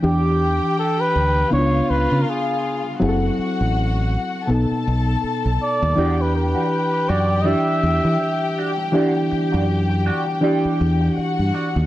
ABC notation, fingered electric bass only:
X:1
M:4/4
L:1/16
Q:"Swing 16ths" 1/4=81
K:Em
V:1 name="Fingered electric bass" clef=bass
E,,4 z2 D,,2 ^C,,2 C,, ^C, z4 | F,,,2 z A,,,4 z B,,, z B,,,2 z B,,, z ^D,, | E,,4 z2 F,,3 z E,, E, z4 | z3 F,,4 z3 E,,2 z G,, z ^D,, |]